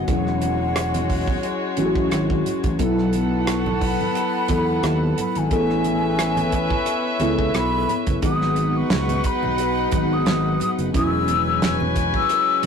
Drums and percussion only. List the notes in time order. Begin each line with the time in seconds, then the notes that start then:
0.08 kick, closed hi-hat, muted conga
0.27 cross-stick
0.41 closed hi-hat, muted conga, high conga
0.76 cross-stick, closed hi-hat, muted conga
0.94 closed hi-hat, high conga, low conga
1.09 kick, open hi-hat
1.28 kick, high conga, low conga
1.43 closed hi-hat
1.77 closed hi-hat, high conga
1.95 kick
2.11 cross-stick, closed hi-hat, muted conga
2.30 kick
2.46 closed hi-hat, low conga
2.64 kick, closed hi-hat
2.79 kick, closed hi-hat, muted conga
2.98 cross-stick
3.13 closed hi-hat, high conga
3.47 cross-stick, closed hi-hat
3.66 high conga, low conga
3.81 kick, open hi-hat, muted conga
4.01 high conga, low conga
4.15 closed hi-hat, muted conga
4.48 kick, closed hi-hat, muted conga, high conga
4.83 cross-stick, closed hi-hat, muted conga
5.18 closed hi-hat, muted conga, low conga
5.35 closed hi-hat
5.51 kick, closed hi-hat, muted conga
5.70 cross-stick
5.84 closed hi-hat, high conga
6.19 cross-stick, closed hi-hat
6.37 closed hi-hat, high conga, low conga
6.52 kick, closed hi-hat
6.71 kick, high conga, low conga
6.86 closed hi-hat, muted conga
7.20 closed hi-hat, muted conga, high conga
7.39 kick
7.54 cross-stick, closed hi-hat, muted conga
7.88 closed hi-hat, muted conga, low conga
8.07 kick, closed hi-hat
8.22 kick, closed hi-hat
8.42 snare
8.56 closed hi-hat, high conga
8.90 snare, closed hi-hat
9.09 closed hi-hat, high conga, low conga
9.24 kick, closed hi-hat
9.43 high conga, low conga
9.58 closed hi-hat, muted conga
9.91 kick, closed hi-hat, high conga
10.26 snare, closed hi-hat, muted conga
10.60 closed hi-hat, muted conga, low conga
10.79 closed hi-hat
10.94 kick, closed hi-hat, muted conga
11.28 closed hi-hat, muted conga, high conga
11.62 snare, closed hi-hat, muted conga
11.80 high conga, low conga
11.96 kick, closed hi-hat, muted conga
12.14 kick, high conga, low conga
12.29 closed hi-hat, muted conga
12.63 closed hi-hat